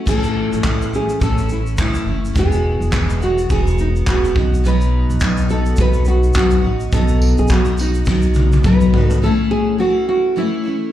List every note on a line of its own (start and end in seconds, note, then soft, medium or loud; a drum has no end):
0.05 0.49 A1 medium
0.05 0.64 A2 medium
0.05 0.62 E3 medium
0.05 0.63 A3 medium
0.05 0.63 C#4 medium
0.05 0.65 E4 medium
0.05 0.95 A4 medium
0.05 kick medium
0.05 crash medium
0.05 shaker medium
0.23 shaker soft
0.53 0.64 A1 medium
0.53 shaker soft
0.63 1.18 A1 medium
0.63 0.92 E3 soft
0.63 0.93 A3 medium
0.63 0.93 C#4 medium
0.63 0.92 E4 medium
0.63 kick medium
0.63 clap medium
0.63 shaker medium
0.82 shaker soft
0.93 1.20 A3 soft
0.93 1.21 C#4 soft
0.93 1.22 E4 soft
0.93 1.22 G#4 medium
0.93 shaker soft
1.09 shaker soft
1.20 1.75 A1 loud
1.20 1.76 E3 medium
1.20 1.77 A3 medium
1.20 1.77 C#4 medium
1.20 1.80 E4 medium
1.20 1.51 A4 medium
1.20 kick loud
1.20 shaker medium
1.38 shaker soft
1.49 1.60 E4 medium
1.49 shaker soft
1.66 shaker soft
1.76 2.05 F#1 medium
1.76 2.06 E3 medium
1.76 2.07 A3 medium
1.76 2.06 C#4 medium
1.76 kick loud
1.76 clap medium
1.76 shaker medium
1.80 2.04 E4 medium
1.80 2.39 E4 medium
1.94 shaker soft
2.05 2.33 F#1 medium
2.05 2.35 A3 soft
2.05 2.35 C#4 soft
2.05 2.35 E4 soft
2.25 shaker soft
2.33 2.78 E1 medium
2.33 2.92 E2 medium
2.33 2.93 B2 medium
2.33 2.89 E3 medium
2.33 2.91 G#3 medium
2.33 2.93 B3 medium
2.33 2.93 F#4 medium
2.33 kick loud
2.33 shaker medium
2.39 3.23 G#4 medium
2.52 shaker soft
2.81 2.92 E1 medium
2.81 shaker soft
2.91 3.46 E1 medium
2.91 3.20 E3 medium
2.91 3.21 G#3 medium
2.91 3.20 B3 medium
2.91 3.19 F#4 medium
2.91 kick medium
2.91 clap medium
2.91 shaker medium
3.10 shaker soft
3.20 3.48 E3 soft
3.20 3.50 G#3 soft
3.20 3.50 B3 soft
3.20 3.49 F#4 medium
3.20 3.51 F#4 medium
3.20 shaker soft
3.38 shaker soft
3.50 4.03 E1 medium
3.50 4.06 E3 medium
3.50 4.07 G#3 medium
3.50 4.08 B3 medium
3.50 4.10 F#4 medium
3.50 3.59 G#4 medium
3.50 kick loud
3.50 shaker medium
3.67 shaker soft
3.78 3.88 D#4 medium
3.78 shaker soft
3.96 shaker soft
4.07 4.34 E1 medium
4.07 4.36 E3 medium
4.07 4.36 G#3 medium
4.07 4.36 B3 medium
4.07 4.66 F#4 medium
4.07 4.33 F#4 medium
4.07 kick loud
4.07 clap loud
4.07 shaker medium
4.25 shaker soft
4.34 5.06 B1 medium
4.34 4.64 B3 soft
4.34 4.65 D#4 soft
4.34 4.64 F#4 medium
4.34 kick medium
4.54 shaker soft
4.64 5.21 B2 medium
4.64 5.19 F#3 medium
4.64 5.20 B3 medium
4.64 5.22 D#4 medium
4.64 5.22 F#4 medium
4.64 5.50 B4 loud
4.64 shaker medium
4.81 shaker soft
5.10 5.20 B1 medium
5.10 shaker soft
5.20 5.75 B1 medium
5.20 5.50 F#3 medium
5.20 5.50 B3 medium
5.20 5.50 D#4 medium
5.20 5.48 F#4 medium
5.20 kick loud
5.20 clap loud
5.20 shaker medium
5.37 shaker soft
5.49 5.76 B3 soft
5.49 5.78 D#4 soft
5.49 5.78 F#4 medium
5.49 5.80 A4 loud
5.49 shaker soft
5.65 shaker soft
5.76 6.32 B1 loud
5.76 6.34 F#3 medium
5.76 6.35 B3 medium
5.76 6.36 D#4 medium
5.76 6.36 F#4 medium
5.76 kick loud
5.76 shaker medium
5.81 6.08 B4 loud
5.93 shaker medium
6.05 6.36 F#4 medium
6.05 shaker soft
6.23 shaker soft
6.33 6.62 B1 medium
6.33 6.64 F#3 medium
6.33 6.65 B3 medium
6.33 6.93 F#4 medium
6.33 kick loud
6.33 clap loud
6.33 shaker medium
6.38 6.63 D#4 medium
6.38 6.61 F#4 medium
6.51 shaker soft
6.62 6.90 A1 medium
6.62 6.92 B3 soft
6.62 6.93 D#4 soft
6.62 6.92 F#4 soft
6.80 shaker soft
6.92 7.35 B1 loud
6.92 7.50 B2 medium
6.92 7.49 F#3 medium
6.92 7.50 B3 medium
6.92 7.51 D#4 medium
6.92 7.51 F#4 medium
6.92 7.38 A4 medium
6.92 kick loud
6.92 shaker medium
7.08 shaker medium
7.22 tambourine medium
7.38 7.49 B1 medium
7.38 7.51 G#4 medium
7.38 shaker soft
7.48 8.03 B1 medium
7.48 7.78 F#3 medium
7.48 7.79 B3 medium
7.48 7.80 F#4 medium
7.48 kick medium
7.48 clap medium
7.48 shaker medium
7.52 7.79 D#4 medium
7.52 7.78 F#4 medium
7.65 shaker medium
7.78 8.61 D#4 medium
7.78 8.08 D#4 soft
7.78 8.07 F#4 medium
7.78 tambourine medium
7.78 shaker soft
7.83 8.08 B3 soft
7.94 shaker medium
8.05 8.60 B1 loud
8.05 8.63 F#3 medium
8.05 kick loud
8.05 snare medium
8.05 shaker medium
8.09 8.64 B3 medium
8.09 8.66 D#4 medium
8.09 8.66 F#4 medium
8.22 shaker soft
8.34 high tom medium
8.34 shaker medium
8.52 high tom medium
8.52 shaker soft
8.64 8.90 B1 loud
8.64 8.93 F#3 medium
8.64 8.93 B3 medium
8.64 8.94 D#4 medium
8.64 8.93 F#4 medium
8.64 9.06 B4 loud
8.64 kick loud
8.64 mid tom medium
8.64 shaker medium
8.81 shaker soft
8.94 9.19 G#1 medium
8.94 9.23 B3 soft
8.94 9.23 D#4 soft
8.94 9.22 F#4 medium
8.94 floor tom medium
9.06 9.18 A4 loud
9.10 floor tom medium
9.10 shaker soft
9.22 9.79 A2 medium
9.22 9.78 E3 medium
9.22 9.78 A3 medium
9.22 9.80 C#4 medium
9.22 9.81 E4 medium
9.22 9.31 A4 loud
9.51 9.79 G#4 loud
9.78 10.35 E3 medium
9.78 10.35 A3 medium
9.78 10.37 C#4 medium
9.78 10.38 E4 medium
9.78 10.07 F#4 medium
10.09 10.37 F#4 loud
10.36 10.64 E3 medium
10.36 10.65 A3 medium
10.36 10.65 C#4 medium
10.36 10.92 E4 loud
10.36 10.62 E4 medium
10.64 10.91 A3 soft
10.64 10.92 C#4 soft
10.64 10.92 E4 medium